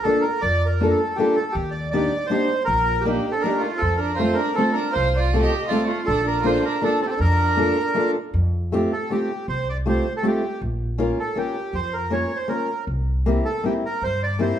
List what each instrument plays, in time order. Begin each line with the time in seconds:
0.03 steel-string acoustic guitar A#3 D4 F4, bandoneon A4
0.07 steel-string acoustic guitar A4
0.21 bandoneon A#4
0.41 upright bass F2, bandoneon D5
0.66 bandoneon A#4
0.81 steel-string acoustic guitar A#3 D4 F4 A4
0.90 bandoneon A4
1.16 steel-string acoustic guitar A#3 D4 F4, bandoneon G4
1.20 steel-string acoustic guitar A4
1.35 bandoneon A4
1.52 upright bass D#2, bandoneon G4
1.71 bandoneon D5
1.91 steel-string acoustic guitar A#3 D4 D#4 G4, bandoneon D5
2.26 steel-string acoustic guitar A#3, bandoneon C5
2.31 steel-string acoustic guitar D4 D#4 G4
2.65 upright bass A#1, bandoneon A#4
3.01 violin A#3, bandoneon G4
3.05 steel-string acoustic guitar A#3 D4 D#4 G4
3.32 violin C4, bandoneon A4
3.38 violin D4, bandoneon A#4
3.44 steel-string acoustic guitar A#3 D4 D#4 G4
3.58 violin A3, bandoneon F4
3.77 violin C4, bandoneon A4
3.82 upright bass F2
3.97 violin D4, bandoneon A#4
4.16 steel-string acoustic guitar A3 C4, violin F4, bandoneon C5
4.20 steel-string acoustic guitar F4 A4
4.34 violin D4, bandoneon A#4
4.55 steel-string acoustic guitar A3 C4, violin C4, bandoneon A4
4.59 steel-string acoustic guitar F4 A4
4.72 violin D4, bandoneon A#4
4.93 upright bass C2, violin F4, bandoneon C5
5.16 violin F4, bandoneon D5
5.33 steel-string acoustic guitar A3 C4 F4 A4
5.42 violin G4, bandoneon D#5
5.67 steel-string acoustic guitar A3 C4, violin F4, bandoneon D5
5.72 steel-string acoustic guitar F4 A4
5.87 violin A3, bandoneon F4
6.06 upright bass A#1, violin D4, bandoneon A4
6.24 violin D4, bandoneon A#4
6.42 steel-string acoustic guitar A#3 D4 F4, violin F4, bandoneon C5
6.46 steel-string acoustic guitar A4
6.63 violin D4, bandoneon A#4
6.82 steel-string acoustic guitar A#3 D4 F4 A4, violin D4, bandoneon A4
7.02 violin C4, bandoneon A4
7.07 violin A#3 C4, bandoneon G4 A4
7.18 upright bass F2, violin D4, bandoneon A#4
7.57 steel-string acoustic guitar A#3 D4 F4 A4
7.94 steel-string acoustic guitar A#3 D4 F4 A4
8.34 upright bass F2
8.72 steel-string acoustic guitar A3 C4 F4 G4
8.92 bandoneon A4
9.10 steel-string acoustic guitar A3 C4 F4 G4, bandoneon G4
9.48 upright bass C2, bandoneon C5
9.69 bandoneon D5
9.86 steel-string acoustic guitar A3 C4 F4 G4, bandoneon C5
10.17 bandoneon A4
10.23 steel-string acoustic guitar A3 C4 F4 G4
10.28 bandoneon G4
10.61 upright bass A#1
10.98 steel-string acoustic guitar A#3 C#4 F4 A#4
11.20 bandoneon A4
11.36 steel-string acoustic guitar A#3 C#4 F4 A#4, bandoneon G4
11.73 upright bass F2, bandoneon C5
11.93 bandoneon A#4
12.10 steel-string acoustic guitar A#3 C#4 F4 A#4, bandoneon C#5
12.36 bandoneon C5
12.48 steel-string acoustic guitar A#3 C#4 F4 A#4, bandoneon A#4
12.87 upright bass C2
13.26 steel-string acoustic guitar A#3 C4 E4 G4
13.45 bandoneon A4
13.63 steel-string acoustic guitar A#3 C4 E4 G4, bandoneon G4
13.86 bandoneon A#4
14.02 upright bass G2, bandoneon C5
14.23 bandoneon D5
14.39 steel-string acoustic guitar A#3 C4 E4 G4, bandoneon C5